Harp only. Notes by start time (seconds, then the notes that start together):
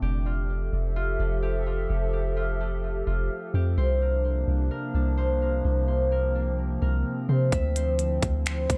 0.02 G4
0.26 F4
0.96 F4
1.20 A3
1.42 G4
1.66 F4
2.13 G4
2.37 F4
2.60 A3
3.07 F4
3.55 G4
3.78 C5
4.02 A#4
4.71 A#4
4.95 D4
5.17 C5
5.42 A#4
5.88 C5
6.12 A#4
6.35 D4
6.82 A#4
7.29 C5
7.53 E5
7.76 C5
8.46 C5
8.69 E4